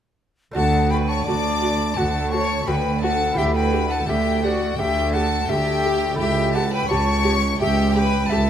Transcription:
0.51 A3 D4 F#4 A4 A5
0.56 D2 F#4 F#5
0.90 F#4 B4 G5 B5
1.08 C#5 A5 C#6
1.26 D2 F#4 D5 A5 D6
1.62 F#4
1.96 D2 F#4 A4 F#5 A5
2.31 F#4 C#5 A5 C#6
2.67 D2 F#4 B4 G5 B5
3.02 F#4 A4 F#5 A5
3.32 B3 E4 G4
3.37 D2 G4 E5 G5
3.55 B4 G5 B5
3.73 G4
3.89 A4 F#5 A5
4.07 D2 G4 E5 G5
4.42 F#4 G4 D5 F#5
4.77 D2 G4 E5 G5
5.13 G4 A4 F#5 A5
5.48 D2 G4 E5 G5
5.84 G4
6.14 A3 E4 G4 G5
6.19 C#2 G4 E5
6.54 G4 A4 F#5 A5
6.72 B4 G5 B5
6.89 C#2 G4 C#5 A5 C#6
7.25 G4
7.60 C#2 G4 E5 G5
7.95 G4 B4 G5 B5
8.30 C#2 G4 A4 E5 A5

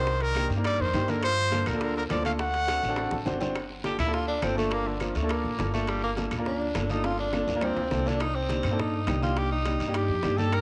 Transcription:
Already playing: C2 D#3 C5
0.06 high bongo, high conga, long guiro
0.20 D#3 A#4, high bongo, high conga, high timbale
0.35 A#3 D4 D#4 G4, high bongo, high conga, high timbale, low timbale, short guiro, claves
0.50 G2, high bongo, short guiro
0.56 A#3 D4 D#4 A#4
0.64 G3 D5, high bongo, high conga, high timbale, long guiro, claves
0.79 F2 D#3 C5, high bongo, high conga
0.93 G2 A#3 D4 D#4 G4, high bongo, low bongo, high conga, high timbale, low timbale, short guiro
1.08 D3 A#3 D4 D#4 A4 A#4, high conga, high timbale, short guiro
1.23 F3 C5, high bongo, high conga, high timbale, long guiro, claves
1.38 high bongo, high conga
1.51 A#3 D4 F4 A4, high bongo, high conga, high timbale, low timbale, short guiro
1.66 D2 D3 A#4, high bongo, high conga, low conga, high timbale, short guiro, claves
1.73 A#3 D4 F4 A4
1.81 D3 A#4, high bongo, high conga, high timbale, long guiro
1.96 D3 A#4, high bongo, high conga
2.09 D2 F3 A#3 D4 F4 A4 D5, high bongo, low bongo, high conga, high timbale, low timbale, short guiro, claves
2.23 A3 A#3 D4 F4 A4 F5, high conga, high timbale, short guiro
2.39 A3 F#5, high bongo, high conga, long guiro
2.54 high bongo, high conga, high timbale
2.67 C4 D4 F#4 A4, high bongo, high conga, high timbale, low timbale, short guiro, claves
2.82 A1, high bongo, short guiro
2.88 C4 D4 F#4 A4
2.96 high bongo, high conga, high timbale, long guiro, claves
3.11 A1 A5, high bongo, high conga
3.25 G1 C4 D4 F#4 C5 F#5, low bongo, high conga, low timbale, short guiro
3.40 C4 D4 F#4 C5 D5, low bongo, high conga, low timbale, short guiro
3.55 high bongo, high conga, high timbale, long guiro, claves
3.70 high bongo, high conga
3.84 A#3 D4 F4 G4 A4, high bongo, high conga, high timbale, low timbale, short guiro
3.99 D2 E4, high bongo, high conga, low conga, high timbale, short guiro, claves
4.06 A#3 D4 F4 A4
4.13 F4, high bongo, high conga, long guiro
4.27 D4, high bongo, high conga
4.42 G1 A#3 C4 D4 F4 A4, high bongo, low bongo, high conga, high timbale, low timbale, short guiro, claves
4.55 A3 A#3 D4 F4 A4, high conga, short guiro
4.71 A#3, high bongo, high timbale, long guiro
4.86 D3, high bongo, high conga
5.00 F3 A#3 D4 F4 A#4, high bongo, high conga, high timbale, low timbale, short guiro, claves
5.15 D2 A3, high conga, high timbale, short guiro
5.22 A#3 D4 F4 A4
5.29 A#3, high bongo, high conga, high timbale, long guiro, claves
5.44 A1, high bongo, high conga
5.57 G1 A#3 D4 F4 A4, high bongo, low bongo, high conga, high timbale, low timbale, short guiro
5.73 A3 A#3 D4 F4 A4, high bongo, high conga, short guiro
5.87 G3, high bongo, high conga, high timbale, long guiro, claves
6.03 A#3, high bongo, high conga
6.16 A#3 D4 F4 A4, high bongo, high conga, high timbale, low timbale, short guiro
6.31 D2, high bongo, high conga, low conga, high timbale, short guiro, claves
6.38 A#3 D4 F4 A#4
6.45 D4, high bongo, high conga, long guiro
6.61 high bongo, high conga
6.75 G1 A#3 D4 F4 A4, high bongo, low bongo, high conga, high timbale, low timbale, short guiro, claves
6.90 A#3 D4 D#4 F4 A4, high conga, short guiro
7.04 F4, high bongo, high conga, high timbale, long guiro
7.18 D4, high bongo, high conga, high timbale
7.33 A#3 D4 F4 A4, high bongo, high conga, high timbale, short guiro, claves
7.47 D2, high conga, low timbale, short guiro
7.55 A#3 D4 F4 A#4
7.61 C4, high bongo, high conga, low timbale, long guiro, claves
7.76 D2, high bongo, high conga, low timbale
7.91 C2 A#3 D4 F4 A4, high bongo, low bongo, high conga, short guiro
8.06 A#3 D4 F4 A4, high bongo, high conga, low timbale, short guiro
8.20 D#4, high bongo, high conga, high timbale, long guiro, claves
8.35 C4, high bongo, high conga
8.49 A#3 D4 D#4 G4, high bongo, high conga, high timbale, low timbale, short guiro
8.63 G2, high bongo, high conga, low conga, high timbale, short guiro, claves
8.71 A#3 D4 D#4 A4
8.79 D#4, high bongo, high conga, low conga, long guiro
8.94 high bongo, high conga
9.07 C2 A#3 D4 D#4 G4, high bongo, low bongo, high conga, high timbale, low timbale, short guiro, claves
9.21 A#3 D4 D#4 F4 G4, high conga, short guiro
9.37 G4, high bongo, high timbale, long guiro
9.51 D#4, high bongo, high conga
9.65 A#3 D4 D#4 G4, high bongo, high conga, high timbale, low timbale, short guiro, claves
9.80 G2, high conga, high timbale, short guiro
9.87 A#3 D4 D#4 G4
9.94 G4, high bongo, high conga, high timbale, long guiro, claves
10.09 F2, high bongo, high conga
10.23 G2 A#3 D4 D#4 G4, high bongo, low bongo, high conga, high timbale, low timbale, short guiro
10.38 A#3 D4 D#4 G4 A4, high bongo, high conga, short guiro
10.52 A#4, high bongo, high timbale, long guiro, claves

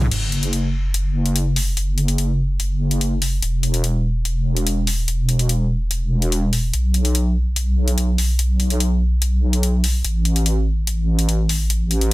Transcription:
0.01 mid tom
0.11 F#1, closed hi-hat, crash
0.32 closed hi-hat
0.43 closed hi-hat
0.53 closed hi-hat
0.94 closed hi-hat
1.26 closed hi-hat
1.36 closed hi-hat
1.56 open hi-hat
1.77 closed hi-hat
1.98 closed hi-hat
2.08 closed hi-hat
2.18 closed hi-hat
2.60 closed hi-hat
2.91 closed hi-hat
3.01 closed hi-hat
3.22 open hi-hat
3.42 E1, closed hi-hat
3.63 closed hi-hat
3.74 closed hi-hat
3.84 closed hi-hat
4.25 closed hi-hat
4.57 closed hi-hat
4.67 closed hi-hat
4.87 open hi-hat
5.08 closed hi-hat
5.29 closed hi-hat
5.39 closed hi-hat
5.49 closed hi-hat
5.91 closed hi-hat
6.22 closed hi-hat
6.32 closed hi-hat
6.53 open hi-hat
6.74 B1, closed hi-hat
6.94 closed hi-hat
7.05 closed hi-hat
7.15 closed hi-hat
7.56 closed hi-hat
7.88 closed hi-hat
7.98 closed hi-hat
8.18 open hi-hat
8.39 closed hi-hat
8.60 closed hi-hat
8.70 closed hi-hat
8.80 closed hi-hat
9.22 closed hi-hat
9.53 closed hi-hat
9.63 closed hi-hat
9.84 open hi-hat
10.04 A1, closed hi-hat
10.25 closed hi-hat
10.36 closed hi-hat
10.46 closed hi-hat
10.87 closed hi-hat
11.19 closed hi-hat
11.29 closed hi-hat
11.49 open hi-hat
11.70 closed hi-hat
11.91 closed hi-hat
12.01 closed hi-hat

